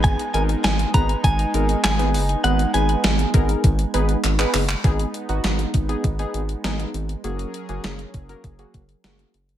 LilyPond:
<<
  \new Staff \with { instrumentName = "Clean electric guitar" } { \time 4/4 \key gis \minor \tempo 4 = 100 gis''8 gis''8 gis''8 ais''8 gis''4 gis''4 | fis''8 gis''2 r4. | r1 | r1 | }
  \new Staff \with { instrumentName = "Synth keys" } { \time 4/4 \key gis \minor <b dis' gis' b'>16 r16 <b dis' gis' ais'>8 r8 <b dis' gis' b'>8 r8 <b dis' gis' ais'>8 r16 <b dis' gis' b'>8 r16 | <b dis' gis' b'>16 r16 <b dis' gis' b'>8 r8 <b dis' gis' ais'>8 r8 <b dis' gis' b'>8 r16 <b dis' gis' b'>8 r16 | <b dis' gis'>8 r16 <b dis' fis'>8 r8 <b dis' gis'>16 r16 <b dis' gis'>8 r16 <b dis' gis'>8 r8 | <ais fis' gis'>8 r16 <ais fis' gis'>8 r8 <ais fis' ais'>16 r16 <ais fis' gis'>8 r16 <ais fis' gis'>8 r8 | }
  \new Staff \with { instrumentName = "Analog synth pad" } { \time 4/4 \key gis \minor << { <b dis'>1~ | <b dis'>1 | <b dis'>1 | <fis gis' ais'>1 | } \\ { gis1 | gis1 | gis1 | cis'1 | } >> }
  \new Staff \with { instrumentName = "Analog synth bass" } { \clef bass \time 4/4 \key gis \minor gis,,8 gis,,8 gis,,8 gis,,8 gis,,8 gis,,8 gis,,8 fis,,8 | gis,,8 gis,,8 gis,,8 gis,,8 gis,,8 gis,,8 gis,,8 fis,,8 | gis,,8 r16 gis,,16 gis,,8 gis,,8 gis,,8 gis,,8 gis,,8 gis,,8 | fis,,8 r16 fis,,16 fis,,8 fis,,8 fis,,8 fis,,8 fis,,8 fis,,8 | }
  \new DrumStaff \with { instrumentName = "Drums" } \drummode { \time 4/4 <hh bd>16 hh16 hh16 hh16 <hh sn>16 hh16 <hh bd>16 hh16 <hh bd>16 hh16 hh16 hh16 <hc hh sn>16 hh16 hho16 hh16 | hh16 hh16 hh16 hh16 <hh sn>16 hh16 <hh bd>16 hh16 <hh bd>16 hh16 hh16 hh16 <hc hh>16 <hc hh>16 <hc hho>16 <hc hh>16 | <hh bd>16 hh16 hh16 hh16 <hh sn>16 hh16 <hh bd>16 hh16 <hh bd>16 hh16 hh16 hh16 <hh sn>16 hh16 hh16 hh16 | hh16 hh16 hh16 hh16 <hh sn>16 hh16 <hh bd>16 hh16 <hh bd>16 hh16 <hh bd>16 hh16 <hh sn>16 hh16 hh16 hh16 | }
>>